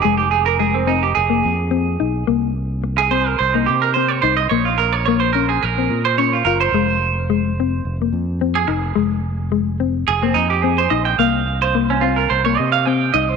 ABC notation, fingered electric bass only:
X:1
M:4/4
L:1/8
Q:"Swing 16ths" 1/4=108
K:Fm
V:1 name="Fingered electric bass" clef=bass
F,,,4 F,,, F,,2 =B,,, | C,,4 C,, C,2 C,, | B,,,4 B,,, B,,2 _G,,, | F,,,4 F,,, F,,2 F,,, |
F,,,4 F,,, F,,2 B,,, | C,,4 C,, C,2 C,, |]